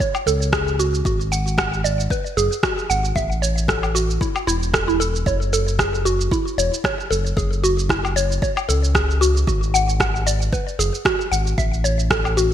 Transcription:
0.00 0.08 C#5 medium
0.00 kick loud
0.00 shaker soft
0.15 low woodblock medium
0.15 shaker soft
0.26 1.02 C#2 medium
0.26 0.40 A4 medium
0.26 shaker medium
0.42 shaker soft
0.53 0.78 G#4 medium
0.53 kick loud
0.53 cross-stick loud
0.53 shaker soft
0.68 shaker soft
0.79 1.04 F#4 medium
0.79 shaker medium
0.94 shaker soft
1.05 2.08 G#1 loud
1.05 1.19 F#4 medium
1.05 kick loud
1.05 shaker soft
1.21 shaker soft
1.32 1.57 F#5 medium
1.32 shaker medium
1.47 shaker soft
1.58 1.66 F#5 medium
1.58 kick loud
1.58 cross-stick loud
1.58 shaker soft
1.74 shaker soft
1.84 1.98 D5 medium
1.84 shaker medium
2.00 shaker soft
2.10 2.36 B4 medium
2.10 kick loud
2.10 shaker soft
2.26 shaker soft
2.37 2.49 F#1 loud
2.37 2.62 G#4 medium
2.37 shaker medium
2.52 shaker soft
2.63 2.77 F#4 medium
2.63 kick loud
2.63 cross-stick loud
2.63 shaker soft
2.79 shaker soft
2.90 3.12 G#1 medium
2.90 3.15 F#5 medium
2.90 shaker medium
3.05 shaker soft
3.15 4.18 A1 loud
3.15 3.24 E5 medium
3.15 kick loud
3.15 shaker soft
3.32 shaker soft
3.42 3.56 C#5 medium
3.42 shaker medium
3.58 shaker soft
3.68 3.94 A4 medium
3.68 kick loud
3.68 cross-stick medium
3.68 shaker soft
3.83 low woodblock medium
3.83 shaker soft
3.95 4.20 F#4 medium
3.95 shaker medium
4.10 shaker soft
4.21 4.35 E4 medium
4.21 kick loud
4.21 shaker soft
4.36 low woodblock medium
4.36 shaker soft
4.47 5.23 E1 medium
4.47 4.56 E4 loud
4.47 shaker medium
4.63 shaker soft
4.74 4.82 A4 medium
4.74 kick loud
4.74 cross-stick medium
4.74 shaker soft
4.88 4.99 E4 medium
4.88 shaker soft
5.00 5.13 A4 medium
5.00 shaker medium
5.16 shaker soft
5.26 6.29 F#1 loud
5.26 5.35 C#5 medium
5.26 kick medium
5.26 shaker soft
5.42 shaker soft
5.53 5.67 A4 medium
5.53 shaker medium
5.68 shaker soft
5.79 6.04 G#4 medium
5.79 kick medium
5.79 cross-stick medium
5.79 shaker soft
5.95 shaker soft
6.05 6.31 F#4 medium
6.05 shaker medium
6.21 shaker soft
6.31 6.45 E4 medium
6.31 kick loud
6.31 shaker soft
6.47 shaker soft
6.58 6.70 E1 loud
6.58 6.83 C#5 medium
6.58 shaker medium
6.74 shaker soft
6.84 6.93 C#5 medium
6.84 kick loud
6.84 cross-stick medium
6.84 shaker soft
7.00 shaker soft
7.11 7.33 F#1 medium
7.11 7.24 A4 medium
7.11 shaker medium
7.26 shaker soft
7.37 8.39 F#1 loud
7.37 7.62 G#4 medium
7.37 kick loud
7.37 shaker soft
7.53 shaker soft
7.64 7.89 F#4 medium
7.64 shaker medium
7.79 shaker soft
7.89 8.03 E4 medium
7.89 kick medium
7.89 cross-stick medium
7.89 shaker soft
8.05 low woodblock medium
8.05 shaker soft
8.16 8.41 C#5 medium
8.16 shaker medium
8.32 shaker soft
8.42 8.51 C#5 medium
8.42 kick loud
8.42 shaker soft
8.57 low woodblock medium
8.57 shaker soft
8.69 9.45 C#2 medium
8.69 8.82 A4 medium
8.69 shaker medium
8.84 shaker soft
8.95 9.20 G#4 medium
8.95 kick loud
8.95 cross-stick medium
8.95 shaker soft
9.11 shaker soft
9.21 9.46 F#4 medium
9.21 shaker medium
9.37 shaker soft
9.47 10.50 G#1 loud
9.47 9.61 F#4 medium
9.47 kick medium
9.47 shaker soft
9.63 shaker soft
9.74 9.99 F#5 medium
9.74 shaker medium
9.89 shaker soft
10.00 10.08 F#5 medium
10.00 kick medium
10.00 cross-stick medium
10.00 shaker soft
10.16 shaker soft
10.27 10.40 D5 medium
10.27 shaker medium
10.42 shaker soft
10.53 10.78 B4 medium
10.53 kick medium
10.53 shaker soft
10.68 shaker soft
10.79 10.91 F#1 loud
10.79 11.04 G#4 medium
10.79 shaker medium
10.95 shaker soft
11.05 11.19 F#4 medium
11.05 kick loud
11.05 cross-stick loud
11.05 shaker soft
11.21 shaker soft
11.32 11.54 G#1 medium
11.32 11.57 F#5 medium
11.32 shaker medium
11.47 shaker soft
11.58 12.54 A1 loud
11.58 11.66 E5 medium
11.58 kick medium
11.58 shaker soft
11.74 shaker soft
11.84 11.98 C#5 medium
11.84 shaker medium
11.99 shaker soft
12.10 12.36 A4 medium
12.10 kick loud
12.10 cross-stick loud
12.10 shaker soft
12.25 low woodblock medium
12.25 shaker soft
12.37 12.54 F#4 medium
12.37 shaker medium

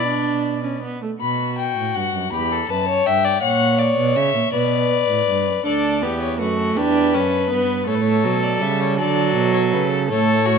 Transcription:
0.00 0.80 B2 medium
0.00 0.84 D5 medium
0.00 0.83 B5 medium
0.07 0.63 D4 medium
0.64 0.83 C#4 medium
0.83 1.02 B3 medium
1.02 1.10 A3 medium
1.21 1.73 B2 medium
1.21 2.34 F#4 medium
1.21 1.56 B5 medium
1.59 1.97 G5 medium
1.77 1.95 A2 medium
1.96 2.03 G2 medium
1.96 2.32 F#5 medium
2.14 2.32 F#2 medium
2.33 2.69 E2 medium
2.33 2.53 G4 medium
2.33 2.69 B5 medium
2.52 2.71 A4 medium
2.69 3.06 F#2 medium
2.69 2.88 B4 medium
2.69 3.07 A5 medium
2.88 3.08 C#5 medium
3.06 3.42 G2 medium
3.06 3.26 E5 medium
3.06 3.41 G5 medium
3.25 3.43 D5 medium
3.42 3.97 A#2 medium
3.42 4.52 C#5 medium
3.42 3.80 F#5 loud
3.78 4.17 D5 medium
3.98 4.18 B2 medium
4.16 4.34 C#3 medium
4.16 4.52 E5 medium
4.35 4.42 A#2 medium
4.53 5.08 B2 medium
4.53 5.64 B4 medium
4.53 5.63 D5 loud
5.09 5.28 A2 medium
5.28 5.48 G2 medium
5.47 5.65 F#2 medium
5.65 6.04 D2 medium
5.65 6.04 D4 medium
5.65 6.00 A4 medium
5.65 6.18 D5 medium
6.03 6.42 E2 medium
6.03 6.41 B3 medium
6.03 6.39 G4 medium
6.21 6.39 C#5 medium
6.40 6.77 F#2 medium
6.40 6.78 A3 medium
6.40 6.79 F#4 medium
6.40 6.58 B4 medium
6.59 6.79 A4 medium
6.77 7.16 E2 medium
6.77 7.16 D4 loud
6.77 7.15 G4 medium
6.77 7.87 B4 medium
7.13 7.53 F#2 medium
7.13 7.50 C#4 medium
7.13 7.52 A4 medium
7.51 7.87 G2 medium
7.51 7.87 B3 medium
7.51 7.88 B4 medium
7.87 8.26 A2 medium
7.87 8.25 A3 loud
7.87 8.96 A4 medium
7.87 7.96 C#5 medium
7.94 8.03 B4 medium
8.01 8.45 C#5 medium
8.24 8.61 B2 medium
8.24 8.62 F#3 medium
8.43 8.63 D5 medium
8.61 9.00 C#3 medium
8.61 8.99 G3 medium
8.61 8.82 E5 medium
8.80 8.98 C#5 medium
8.98 9.35 D3 medium
8.98 10.09 F#3 loud
8.98 10.07 A4 medium
8.98 9.53 D5 medium
9.36 9.74 B2 medium
9.54 9.61 C#5 medium
9.72 10.11 C#3 medium
9.72 9.90 B4 medium
9.90 9.98 A4 medium
10.09 10.58 A2 medium
10.09 10.58 A3 medium
10.09 10.47 A4 medium
10.09 10.58 C#5 loud
10.46 10.58 F#4 medium

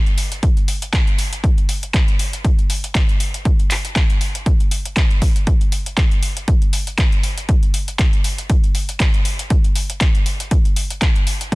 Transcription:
0.07 closed hi-hat soft
0.18 open hi-hat loud
0.32 closed hi-hat medium
0.43 kick loud
0.43 closed hi-hat medium
0.57 closed hi-hat soft
0.68 open hi-hat loud
0.82 closed hi-hat medium
0.93 kick loud
0.93 clap loud
0.93 closed hi-hat medium
1.07 closed hi-hat soft
1.19 open hi-hat medium
1.33 closed hi-hat soft
1.44 kick loud
1.44 closed hi-hat soft
1.58 closed hi-hat soft
1.69 open hi-hat loud
1.83 closed hi-hat soft
1.94 kick loud
1.94 clap loud
1.94 closed hi-hat soft
2.08 closed hi-hat soft
2.19 open hi-hat loud
2.33 closed hi-hat medium
2.45 kick loud
2.45 closed hi-hat medium
2.59 closed hi-hat soft
2.70 open hi-hat loud
2.84 closed hi-hat soft
2.95 kick loud
2.95 clap loud
2.95 closed hi-hat medium
3.09 closed hi-hat soft
3.20 open hi-hat loud
3.34 closed hi-hat soft
3.45 kick loud
3.45 closed hi-hat soft
3.59 closed hi-hat soft
3.71 clap medium
3.71 open hi-hat loud
3.85 closed hi-hat soft
3.96 kick loud
3.96 clap loud
3.96 closed hi-hat soft
4.10 closed hi-hat soft
4.21 open hi-hat loud
4.35 closed hi-hat medium
4.46 kick loud
4.46 closed hi-hat medium
4.60 closed hi-hat soft
4.71 open hi-hat loud
4.85 closed hi-hat soft
4.97 kick loud
4.97 clap loud
4.97 closed hi-hat medium
5.11 closed hi-hat soft
5.22 kick medium
5.22 open hi-hat medium
5.36 closed hi-hat soft
5.47 kick loud
5.47 closed hi-hat soft
5.61 closed hi-hat soft
5.72 open hi-hat loud
5.86 closed hi-hat soft
5.97 kick loud
5.97 clap loud
5.97 closed hi-hat soft
6.11 closed hi-hat soft
6.23 open hi-hat medium
6.37 closed hi-hat medium
6.48 kick loud
6.48 closed hi-hat medium
6.62 closed hi-hat soft
6.73 open hi-hat loud
6.87 closed hi-hat soft
6.98 kick loud
6.98 clap loud
6.98 closed hi-hat medium
7.12 closed hi-hat soft
7.23 open hi-hat medium
7.38 closed hi-hat medium
7.49 kick loud
7.49 closed hi-hat soft
7.63 closed hi-hat soft
7.74 open hi-hat loud
7.88 closed hi-hat medium
7.99 kick loud
7.99 clap loud
7.99 closed hi-hat soft
8.13 closed hi-hat soft
8.24 open hi-hat medium
8.38 closed hi-hat soft
8.50 kick loud
8.50 closed hi-hat medium
8.64 closed hi-hat soft
8.75 open hi-hat loud
8.89 closed hi-hat soft
9.00 kick loud
9.00 clap loud
9.00 closed hi-hat medium
9.14 closed hi-hat soft
9.25 open hi-hat medium
9.39 closed hi-hat soft
9.50 kick loud
9.50 closed hi-hat medium
9.64 closed hi-hat soft
9.76 open hi-hat loud
9.90 closed hi-hat medium
10.01 kick loud
10.01 clap loud
10.01 closed hi-hat medium
10.15 closed hi-hat soft
10.26 open hi-hat medium
10.40 closed hi-hat medium
10.51 kick loud
10.51 closed hi-hat medium
10.65 closed hi-hat soft
10.76 open hi-hat loud
10.90 closed hi-hat medium
11.02 kick loud
11.02 clap loud
11.02 closed hi-hat medium
11.16 closed hi-hat soft
11.27 open hi-hat medium
11.41 closed hi-hat medium

